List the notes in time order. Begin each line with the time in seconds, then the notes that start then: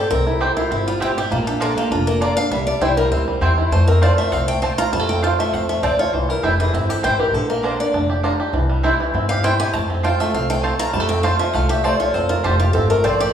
Already playing: G4 A4
0.10 C2 C4 A#4
0.27 E4
0.40 C4 E4 G4 C5 G5
0.57 E4 F4
0.71 G1 C4 E4
0.87 G3 F4
1.00 C4 E4 G4 C5 G5
1.18 E4 G4
1.31 A#1 A#3 F4
1.47 D4 G4
1.60 A#3 D4 F4 A4 D5 A#5
1.77 A#3 G4
1.91 F1 D4 F4
2.07 A#3 A#4
2.21 A#3 D4 F4 D5 A#5
2.37 D4 F5
2.51 C2 G3 E5
2.67 D5
2.81 C2 C4 E4 C5 G5
2.97 G3 A#4
3.11 D2 C4 C5
3.28 G3
3.41 E2 C4 E4 C5 G5
3.58 E4
3.71 F2 A3 C5
3.87 C4 A#4
4.02 C4 F4 C5 D5 A5
4.18 A3 E5
4.32 C2 C4 F5
4.48 A3 G5
4.62 C4 F4 C5 A5
4.78 F4 A#5
4.92 F2 G3 A5
4.99 A3
5.09 C4 G5
5.22 C4 F4 C5 F5 A5
5.39 A3 E5
5.52 E2 C4 F5
5.69 A3 E5
5.83 D2 C4 F4 C5 D5 A5
5.99 F4 C#5
6.13 C2 E3 C5
6.29 G3 A#4
6.43 F1 C4 E4 A4 C5 G5
6.60 E3 G#4
6.74 G1 C4 G4
6.89 G4 A4
7.03 A1 C4 E4 C5 G5
7.20 G4 A#4
7.33 A#1 D3 A4
7.50 A#3 A#4
7.63 A#3 D4 F4 C5 D5 A#5
7.80 D3 D5
7.94 F1 D4
8.10 G4
8.23 A#3 D4 F4 D5 A#5
8.40 G4
8.53 C2 E3
8.69 G3
8.83 C4 E4 C5 G5
9.00 E3
9.14 G2 C4
9.29 G4 F5
9.43 C4 E4 C5 G5
9.60 G4 G#5
9.73 F2 A3 A5
9.90 C4
10.03 C4 F4 C5 G5 A5
10.20 A3 E5
10.33 C2 C4 F5
10.50 A3 G5
10.63 C4 F4 C5 A5
10.79 F4 A#5
10.93 F2 G3 A5
11.00 A3
11.09 C4 G5
11.23 C4 F4 C5 F5 A5
11.39 F3 E5
11.53 C2 A3 F5
11.69 G4 E5
11.84 A3 C4 F4 C5 D5 A5
12.00 F4 C#5
12.14 F2 C4 C5
12.29 F4 A#4
12.44 F1 C4 F4 G4 A4 C5 A5
12.60 F4 G4
12.73 G1 C4 A4
12.90 A3 A#4
13.04 A1 C4 F4 C5 D5 A5
13.20 G4 D5